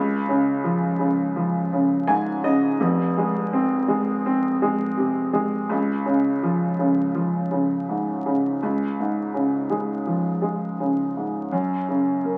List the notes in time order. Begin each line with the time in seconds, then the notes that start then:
Already playing: C#2
0.28 C#3
0.64 F3
0.99 C#3
1.36 F3
1.73 C#3
2.07 G#2 G#5
2.44 C#3 D#5
2.80 F1 F2
3.17 G#3
3.53 C4
3.88 G#3
4.26 C4
4.62 G#3
4.97 C3
5.33 G#3
5.69 C#2
6.06 C#3
6.43 F3
6.79 C#3
7.15 F3
7.51 C#3
7.89 G#2
8.26 C#3
8.63 C#2
9.00 G#2
9.34 C#3
9.70 G#3
10.07 F3
10.42 G#3
10.80 C#3
11.17 G#2
11.52 F#2
11.88 C#3
12.25 A#3